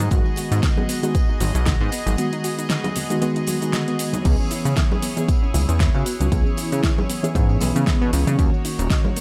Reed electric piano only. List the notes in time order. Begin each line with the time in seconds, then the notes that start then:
0.10 D#3 G#3 B3 F#4
1.02 D#3 G#3 B3 F#4
2.17 D#3 G#3 B3 F#4
3.10 D#3 G#3 B3 F#4
3.21 D#3 G#3 B3 F#4
3.61 D#3 G#3 B3 F#4
4.24 E3 B3 C#4 G#4
5.17 E3 B3 C#4 G#4
6.31 E3 B3 C#4 G#4
7.23 E3 B3 C#4 G#4
7.35 E3 B3 C#4 G#4
7.74 E3 B3 C#4 G#4
8.38 D#3 A#3 C#4 F#4